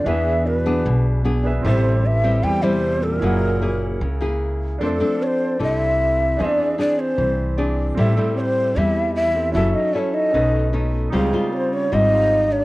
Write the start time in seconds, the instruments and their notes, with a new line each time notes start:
0.04 upright bass E2, trombone E3, nylon-string guitar E3 B3 D4 G#4, grand piano D4 G#4 B4, shakuhachi E5
0.09 grand piano E5
0.45 trombone B2, shakuhachi B4
0.65 nylon-string guitar B3 D4 G#4
0.85 upright bass B1, nylon-string guitar B2
1.24 nylon-string guitar B3 D4 G#4
1.43 grand piano D4 G#4 B4 E5
1.61 upright bass A1, nylon-string guitar A2 G3 C4, trombone C3, grand piano C4 G4
1.65 nylon-string guitar E4, grand piano A4 E5, shakuhachi C5
2.04 trombone E3, shakuhachi E5
2.24 nylon-string guitar G3 C4 E4
2.43 upright bass E2, nylon-string guitar E3, trombone G3, shakuhachi G5
2.62 trombone C3, nylon-string guitar G3 C4 E4, shakuhachi C5
3.02 trombone A#2, shakuhachi A4
3.14 shakuhachi A#4
3.20 upright bass F#1, nylon-string guitar F#3 A#3 E4, grand piano E4 G#4 A#4
3.24 nylon-string guitar G#4, grand piano F#5
3.62 nylon-string guitar A#3 E4 G#4
4.01 upright bass C#2, nylon-string guitar C#3
4.21 nylon-string guitar A#3 E4 G#4
4.79 upright bass F2, nylon-string guitar F3 C4 D4 A4, trombone A3, grand piano D4 A4
4.83 shakuhachi A#4, grand piano C5 D5
4.89 shakuhachi A4
5.00 nylon-string guitar C4 D4 A4
5.20 trombone C4, shakuhachi C#5
5.26 shakuhachi C5
5.59 upright bass C2, nylon-string guitar C3 C4 D4 A4, trombone E4, shakuhachi E5
6.36 upright bass E2, nylon-string guitar E3 C4 D4 G#4, grand piano D4 G#4, trombone D4
6.40 grand piano C5 E5, shakuhachi D#5
6.45 shakuhachi D5
6.77 nylon-string guitar C4 D4 G#4, trombone D4, shakuhachi D5
6.98 trombone C4, shakuhachi C5
7.18 upright bass C2, nylon-string guitar E3
7.57 nylon-string guitar C4 D4 G#4, grand piano D5
7.94 upright bass A1, nylon-string guitar A2 G3 C4 E4, trombone A3, grand piano C4 G4 A4
7.99 shakuhachi A4, grand piano E5
8.17 nylon-string guitar G3 C4 E4
8.36 trombone C4, shakuhachi C#5
8.40 shakuhachi C5
8.75 upright bass E2, nylon-string guitar E3 G3 C4 E4, trombone E4, shakuhachi E5
9.14 trombone E4, shakuhachi E5
9.34 grand piano C4 G4 A4 E5
9.52 upright bass F#1, nylon-string guitar F#3 C#4 E4, grand piano C#4 F#4, trombone E4, shakuhachi E5
9.56 nylon-string guitar A4, grand piano A4 E5
9.74 trombone D#4, shakuhachi D#5
9.93 trombone C#4, nylon-string guitar C#4 E4 A4, shakuhachi D5
9.98 shakuhachi C#5
10.13 trombone D#4, shakuhachi D#5
10.31 upright bass B1, nylon-string guitar B2 A3 C#4, grand piano C#4 A4 B4
10.35 nylon-string guitar D#4, grand piano D#5
10.73 nylon-string guitar A3 C#4 D#4
11.10 upright bass C#2, nylon-string guitar C#3 G3 C4 F4, trombone G#3, grand piano D#4 G5
11.14 shakuhachi G#4, grand piano C5 F5
11.33 nylon-string guitar G3 C4 F4
11.53 trombone C4, shakuhachi C5 C#5
11.72 trombone C#4, shakuhachi C#5
11.91 upright bass G#1, nylon-string guitar G#2 G3 C4 F4, trombone D#4, shakuhachi D#5
12.11 grand piano D#4 G4 C5 F5
12.50 trombone D4, shakuhachi D5